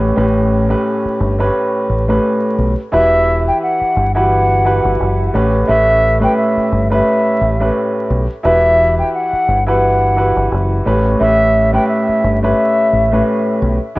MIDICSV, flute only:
0, 0, Header, 1, 2, 480
1, 0, Start_track
1, 0, Tempo, 689655
1, 118, Time_signature, 4, 2, 24, 8
1, 9737, End_track
2, 0, Start_track
2, 0, Title_t, "Flute"
2, 0, Program_c, 0, 73
2, 2040, Note_on_c, 0, 76, 115
2, 2390, Note_off_c, 0, 76, 0
2, 2420, Note_on_c, 0, 79, 80
2, 2512, Note_off_c, 0, 79, 0
2, 2523, Note_on_c, 0, 78, 83
2, 2871, Note_off_c, 0, 78, 0
2, 2885, Note_on_c, 0, 78, 85
2, 3447, Note_off_c, 0, 78, 0
2, 3952, Note_on_c, 0, 76, 117
2, 4306, Note_off_c, 0, 76, 0
2, 4338, Note_on_c, 0, 79, 81
2, 4431, Note_off_c, 0, 79, 0
2, 4435, Note_on_c, 0, 76, 83
2, 4788, Note_off_c, 0, 76, 0
2, 4821, Note_on_c, 0, 76, 85
2, 5375, Note_off_c, 0, 76, 0
2, 5880, Note_on_c, 0, 76, 110
2, 6230, Note_off_c, 0, 76, 0
2, 6257, Note_on_c, 0, 79, 80
2, 6350, Note_off_c, 0, 79, 0
2, 6361, Note_on_c, 0, 78, 85
2, 6710, Note_off_c, 0, 78, 0
2, 6739, Note_on_c, 0, 78, 81
2, 7294, Note_off_c, 0, 78, 0
2, 7800, Note_on_c, 0, 76, 117
2, 8150, Note_off_c, 0, 76, 0
2, 8170, Note_on_c, 0, 79, 88
2, 8265, Note_off_c, 0, 79, 0
2, 8270, Note_on_c, 0, 76, 83
2, 8625, Note_off_c, 0, 76, 0
2, 8648, Note_on_c, 0, 76, 80
2, 9208, Note_off_c, 0, 76, 0
2, 9737, End_track
0, 0, End_of_file